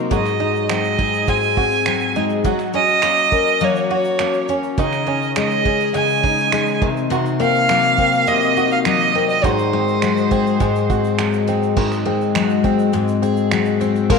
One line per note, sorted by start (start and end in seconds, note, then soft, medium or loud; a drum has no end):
0.00 0.17 C3 medium
0.00 0.10 F#3 medium
0.00 0.43 F#3 medium
0.00 0.17 A#3 medium
0.00 0.40 D#4 soft
0.00 1.57 D#4 medium
0.00 0.12 F#4 medium
0.00 0.17 A#4 medium
0.11 1.27 G#2 medium
0.11 2.44 F#3 medium
0.11 1.56 F#4 medium
0.11 0.66 D#5 medium
0.11 kick medium
0.11 shaker medium
0.26 finger snap soft
0.26 shaker soft
0.40 2.15 G#3 medium
0.40 0.97 D#4 medium
0.56 shaker soft
0.69 1.86 F#3 medium
0.69 1.27 C4 medium
0.69 1.31 D#5 medium
0.69 finger snap medium
0.69 shaker medium
0.84 shaker soft
0.98 2.15 D#4 medium
0.98 2.50 G#4 medium
0.98 kick medium
1.14 shaker medium
1.27 2.51 G#2 medium
1.27 1.85 C4 medium
1.27 2.16 G#5 medium
1.27 kick medium
1.27 shaker medium
1.43 shaker medium
1.57 2.50 C4 medium
1.57 2.46 F#4 medium
1.57 kick medium
1.72 shaker soft
1.86 2.44 F#3 medium
1.86 2.50 C4 medium
1.86 finger snap loud
1.86 shaker medium
2.00 shaker soft
2.15 2.51 G#3 medium
2.15 2.51 D#4 soft
2.15 shaker soft
2.30 shaker soft
2.44 3.60 F#3 medium
2.44 4.78 F#3 medium
2.44 3.90 F#4 medium
2.44 kick medium
2.44 shaker medium
2.59 finger snap soft
2.59 shaker soft
2.73 3.02 C#4 medium
2.73 3.32 C#4 medium
2.73 3.65 D#5 loud
2.73 shaker medium
2.88 shaker soft
3.02 3.61 A#3 medium
3.02 4.19 C#4 medium
3.02 finger snap medium
3.02 shaker medium
3.17 shaker soft
3.32 4.49 C#4 medium
3.32 4.83 A#4 medium
3.32 kick medium
3.32 shaker soft
3.47 shaker medium
3.60 4.84 F#3 medium
3.60 4.19 A#3 medium
3.60 3.92 C#5 medium
3.60 shaker medium
3.76 shaker soft
3.91 4.84 F#4 medium
3.91 4.78 F#4 medium
3.91 4.46 C#5 medium
4.05 shaker medium
4.19 4.84 A#3 medium
4.19 4.48 C#4 medium
4.19 finger snap loud
4.19 shaker medium
4.33 shaker soft
4.48 4.84 C#4 medium
4.48 shaker medium
4.63 shaker soft
4.78 5.93 C#3 medium
4.78 6.81 D#3 medium
4.78 6.23 D#4 medium
4.78 5.33 D#5 medium
4.78 kick loud
4.78 shaker medium
4.93 finger snap soft
4.93 shaker soft
5.07 6.87 C#4 medium
5.07 5.65 C#4 medium
5.22 shaker soft
5.36 6.51 G#3 medium
5.36 5.94 G#3 medium
5.36 5.92 D#5 medium
5.36 finger snap medium
5.36 shaker medium
5.51 shaker soft
5.65 6.88 C#4 medium
5.65 6.88 G#4 medium
5.65 kick medium
5.81 shaker medium
5.94 6.81 C#3 medium
5.94 6.52 G#3 medium
5.94 6.79 G#5 medium
5.94 shaker medium
6.09 shaker medium
6.23 8.56 D#4 medium
6.23 7.11 D#4 medium
6.23 kick medium
6.38 shaker soft
6.52 6.88 G#3 medium
6.52 finger snap loud
6.52 shaker medium
6.67 shaker soft
6.82 7.09 C3 medium
6.82 7.11 D#3 medium
6.82 kick loud
6.97 shaker soft
7.10 8.26 C3 medium
7.10 9.43 D#3 medium
7.10 8.56 F#4 medium
7.10 shaker medium
7.26 shaker medium
7.39 9.14 A#3 medium
7.39 7.98 C4 medium
7.39 8.29 F5 loud
7.39 shaker soft
7.55 shaker soft
7.69 8.85 F#3 medium
7.69 8.27 A#3 medium
7.69 finger snap medium
7.69 shaker medium
7.84 shaker soft
7.98 9.15 C4 medium
7.98 9.50 A#4 medium
7.98 kick medium
8.13 shaker medium
8.27 9.50 C3 medium
8.27 8.85 A#3 medium
8.27 8.71 D#5 medium
8.27 shaker medium
8.42 shaker medium
8.57 10.89 D#4 medium
8.57 9.44 F#4 medium
8.57 shaker medium
8.71 8.78 F5 medium
8.71 shaker soft
8.85 9.76 F#3 medium
8.85 9.50 A#3 medium
8.85 9.27 D#5 medium
8.85 finger snap loud
8.85 shaker medium
9.00 shaker soft
9.15 9.50 A#3 medium
9.15 9.73 C4 medium
9.29 9.45 D#5 medium
9.29 shaker soft
9.44 10.59 G#2 medium
9.44 11.76 D#3 medium
9.44 10.89 F#4 medium
9.44 11.19 C5 medium
9.44 kick loud
9.44 shaker medium
9.59 shaker medium
9.73 11.47 G#3 medium
9.73 10.02 C4 medium
9.88 shaker soft
10.02 11.18 F#3 medium
10.02 10.60 G#3 medium
10.02 finger snap medium
10.02 shaker medium
10.17 shaker soft
10.31 11.48 C4 medium
10.31 12.38 G#4 medium
10.31 kick medium
10.31 shaker soft
10.47 shaker medium
10.60 11.75 G#2 medium
10.60 11.19 G#3 medium
10.60 kick medium
10.60 shaker medium
10.76 shaker medium
10.90 12.38 C4 medium
10.90 12.09 F#4 medium
10.90 kick medium
10.90 shaker medium
11.04 shaker soft
11.19 12.09 F#3 medium
11.19 12.35 G#3 medium
11.19 finger snap loud
11.19 shaker medium
11.33 shaker soft
11.47 12.05 G#3 medium
11.47 12.06 C4 medium
11.47 shaker medium
11.63 shaker soft
11.77 12.92 G#2 medium
11.77 14.09 D#3 medium
11.77 kick loud
11.77 crash medium
11.92 finger snap soft
11.92 shaker medium
12.06 14.15 G#3 medium
12.06 12.64 C4 medium
12.21 shaker soft
12.35 13.51 F#3 medium
12.35 12.92 G#3 medium
12.35 finger snap loud
12.35 shaker medium
12.50 shaker soft
12.64 13.22 C4 medium
12.64 13.81 C4 medium
12.64 kick medium
12.64 shaker medium
12.79 shaker medium
12.93 14.16 G#2 medium
12.93 13.50 G#3 medium
12.93 shaker medium
13.08 shaker medium
13.22 13.81 C4 medium
13.22 14.10 G#4 medium
13.22 shaker medium
13.37 shaker soft
13.51 14.16 F#3 medium
13.51 13.80 G#3 medium
13.51 finger snap loud
13.51 shaker medium
13.66 shaker soft
13.81 14.19 C4 medium
13.81 shaker medium
13.96 shaker soft
14.10 14.19 A#2 medium
14.10 14.19 F3 medium
14.10 14.19 A#4 medium
14.10 14.19 F5 medium
14.10 kick loud
14.10 crash loud